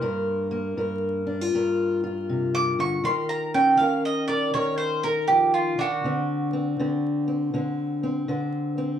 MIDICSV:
0, 0, Header, 1, 3, 480
1, 0, Start_track
1, 0, Key_signature, -2, "minor"
1, 0, Tempo, 750000
1, 22, Time_signature, 4, 2, 24, 8
1, 5756, End_track
2, 0, Start_track
2, 0, Title_t, "Mandolin"
2, 0, Program_c, 0, 25
2, 0, Note_on_c, 0, 72, 109
2, 805, Note_off_c, 0, 72, 0
2, 1630, Note_on_c, 0, 86, 114
2, 1783, Note_off_c, 0, 86, 0
2, 1792, Note_on_c, 0, 85, 93
2, 1944, Note_off_c, 0, 85, 0
2, 1951, Note_on_c, 0, 84, 96
2, 2104, Note_off_c, 0, 84, 0
2, 2106, Note_on_c, 0, 82, 95
2, 2262, Note_off_c, 0, 82, 0
2, 2268, Note_on_c, 0, 79, 97
2, 2415, Note_on_c, 0, 77, 93
2, 2422, Note_off_c, 0, 79, 0
2, 2576, Note_off_c, 0, 77, 0
2, 2594, Note_on_c, 0, 75, 102
2, 2734, Note_off_c, 0, 75, 0
2, 2737, Note_on_c, 0, 74, 99
2, 2897, Note_off_c, 0, 74, 0
2, 2904, Note_on_c, 0, 73, 97
2, 3054, Note_off_c, 0, 73, 0
2, 3057, Note_on_c, 0, 72, 93
2, 3217, Note_off_c, 0, 72, 0
2, 3222, Note_on_c, 0, 70, 99
2, 3374, Note_off_c, 0, 70, 0
2, 3376, Note_on_c, 0, 67, 97
2, 3536, Note_off_c, 0, 67, 0
2, 3545, Note_on_c, 0, 65, 96
2, 3701, Note_off_c, 0, 65, 0
2, 3705, Note_on_c, 0, 62, 96
2, 3716, Note_on_c, 0, 66, 106
2, 5118, Note_off_c, 0, 62, 0
2, 5124, Note_off_c, 0, 66, 0
2, 5756, End_track
3, 0, Start_track
3, 0, Title_t, "Steel-string acoustic guitar"
3, 0, Program_c, 1, 25
3, 0, Note_on_c, 1, 58, 65
3, 8, Note_on_c, 1, 43, 83
3, 14, Note_on_c, 1, 70, 77
3, 324, Note_off_c, 1, 58, 0
3, 326, Note_on_c, 1, 58, 66
3, 488, Note_off_c, 1, 43, 0
3, 494, Note_off_c, 1, 70, 0
3, 495, Note_on_c, 1, 43, 69
3, 497, Note_on_c, 1, 70, 64
3, 810, Note_on_c, 1, 62, 58
3, 904, Note_off_c, 1, 62, 0
3, 904, Note_on_c, 1, 65, 49
3, 981, Note_off_c, 1, 43, 0
3, 988, Note_on_c, 1, 43, 77
3, 990, Note_off_c, 1, 70, 0
3, 992, Note_on_c, 1, 70, 69
3, 1295, Note_off_c, 1, 65, 0
3, 1303, Note_on_c, 1, 65, 63
3, 1468, Note_on_c, 1, 48, 67
3, 1780, Note_off_c, 1, 48, 0
3, 1784, Note_on_c, 1, 50, 68
3, 1929, Note_off_c, 1, 65, 0
3, 1929, Note_off_c, 1, 70, 0
3, 1940, Note_off_c, 1, 50, 0
3, 1943, Note_on_c, 1, 51, 85
3, 1946, Note_on_c, 1, 70, 73
3, 1948, Note_off_c, 1, 43, 0
3, 2254, Note_off_c, 1, 58, 0
3, 2267, Note_on_c, 1, 61, 64
3, 2419, Note_off_c, 1, 51, 0
3, 2427, Note_off_c, 1, 70, 0
3, 2427, Note_on_c, 1, 51, 70
3, 2434, Note_on_c, 1, 70, 63
3, 2737, Note_off_c, 1, 70, 0
3, 2745, Note_on_c, 1, 70, 68
3, 2898, Note_off_c, 1, 51, 0
3, 2905, Note_on_c, 1, 51, 76
3, 2907, Note_off_c, 1, 70, 0
3, 2914, Note_on_c, 1, 70, 69
3, 3217, Note_off_c, 1, 70, 0
3, 3225, Note_on_c, 1, 70, 69
3, 3382, Note_on_c, 1, 53, 67
3, 3691, Note_off_c, 1, 51, 0
3, 3697, Note_off_c, 1, 53, 0
3, 3698, Note_on_c, 1, 51, 71
3, 3849, Note_off_c, 1, 70, 0
3, 3851, Note_off_c, 1, 61, 0
3, 3864, Note_off_c, 1, 51, 0
3, 3867, Note_on_c, 1, 50, 78
3, 3875, Note_on_c, 1, 60, 69
3, 4173, Note_off_c, 1, 60, 0
3, 4181, Note_on_c, 1, 60, 61
3, 4341, Note_off_c, 1, 50, 0
3, 4343, Note_off_c, 1, 60, 0
3, 4348, Note_on_c, 1, 50, 73
3, 4352, Note_on_c, 1, 60, 57
3, 4649, Note_off_c, 1, 60, 0
3, 4657, Note_on_c, 1, 60, 60
3, 4816, Note_off_c, 1, 50, 0
3, 4821, Note_off_c, 1, 60, 0
3, 4823, Note_on_c, 1, 50, 72
3, 4829, Note_on_c, 1, 60, 65
3, 5134, Note_off_c, 1, 60, 0
3, 5141, Note_on_c, 1, 60, 65
3, 5293, Note_off_c, 1, 50, 0
3, 5300, Note_on_c, 1, 50, 74
3, 5305, Note_on_c, 1, 72, 69
3, 5610, Note_off_c, 1, 60, 0
3, 5618, Note_on_c, 1, 60, 66
3, 5756, Note_off_c, 1, 50, 0
3, 5756, Note_off_c, 1, 60, 0
3, 5756, Note_off_c, 1, 72, 0
3, 5756, End_track
0, 0, End_of_file